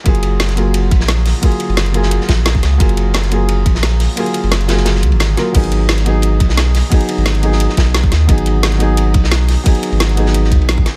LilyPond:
<<
  \new Staff \with { instrumentName = "Felt piano" } { \time 4/4 \key gis \dorian \tempo 4 = 175 <fis ais eis' gis'>4. <fis ais eis' gis'>2~ <fis ais eis' gis'>8 | <fis ais eis' gis'>4. <fis ais eis' gis'>2~ <fis ais eis' gis'>8 | <fis ais eis' gis'>4. <fis ais eis' gis'>2~ <fis ais eis' gis'>8 | <fis ais eis' gis'>4. <fis ais eis' gis'>2 <fis ais eis' ais'>8 |
<fis b dis' gis'>4. <fis b dis' gis'>2~ <fis b dis' gis'>8 | <fis b dis' gis'>4. <fis b dis' gis'>2~ <fis b dis' gis'>8 | <fis b dis' gis'>4. <fis b dis' gis'>2~ <fis b dis' gis'>8 | <fis b dis' gis'>4. <fis b dis' gis'>2 r8 | }
  \new Staff \with { instrumentName = "Sub bass" } { \clef bass \time 4/4 \key gis \dorian fis,,2~ fis,,8 ais,,4~ ais,,16 r16 | r8. fis,,4. r16 ais,,4 cis,8 | fis,,2~ fis,,8 ais,,4~ ais,,16 r16 | r8. fis,,4.~ fis,,16 cis,16 gis,,8. r8 |
gis,,2~ gis,,8 b,,4~ b,,16 r16 | r8. gis,,4. r16 b,,4 dis,8 | gis,,2~ gis,,8 b,,4~ b,,16 r16 | r8. gis,,4.~ gis,,16 dis,16 ais,,8. r8 | }
  \new DrumStaff \with { instrumentName = "Drums" } \drummode { \time 4/4 <hh bd cymr>16 hh16 <hh cymr>8 <hh cymr sn>16 <hh sn>16 <hh cymr>8 <hh cymr>8 <hh bd cymr>16 sn16 <hh cymr sn>8 <hh hho sn>8 | <hh bd cymr>16 hh16 <hh cymr>16 cymr16 <hh cymr sn>16 hh16 <hh cymr>16 sn16 <hh cymr>16 sn16 <hh bd cymr sn>16 cymr16 <hh cymr sn>16 bd16 <hh cymr sn>8 | <hh bd cymr>16 hh16 <hh cymr>8 <hh cymr sn>16 <hh sn>16 <hh cymr>8 <hh cymr>8 <hh bd cymr>16 sn16 <hh cymr sn>8 <hh hho sn>8 | <hh cymr>16 hh16 <hh cymr>16 cymr16 <hh cymr sn>16 hh16 <hh cymr sn>16 sn16 <hh cymr sn>16 sn16 <hh cymr>16 cymr16 <hh cymr sn>8 <hh cymr sn>8 |
<cymc hh bd cymr>16 hh16 <hh cymr>8 <hh cymr sn>16 <hh sn>16 <hh cymr>8 <hh cymr>8 <hh bd cymr>16 sn16 <hh cymr sn>8 <hh hho sn>8 | <hh bd cymr>16 hh16 <hh cymr>16 cymr16 <hh cymr sn>16 hh16 <hh cymr>16 sn16 <hh cymr>16 sn16 <hh bd cymr sn>16 cymr16 <hh cymr sn>16 bd16 <hh cymr sn>8 | <hh bd cymr>16 hh16 <hh cymr>8 <hh cymr sn>16 <hh sn>16 <hh cymr>8 <hh cymr>8 <hh bd cymr>16 sn16 <hh cymr sn>8 <hh hho sn>8 | <hh bd cymr>16 hh16 <hh cymr>16 cymr16 <hh cymr sn>16 hh16 <hh cymr>16 sn16 <hh cymr>16 sn16 <hh bd cymr>16 cymr16 <hh sn>16 bd16 <hh cymr sn>8 | }
>>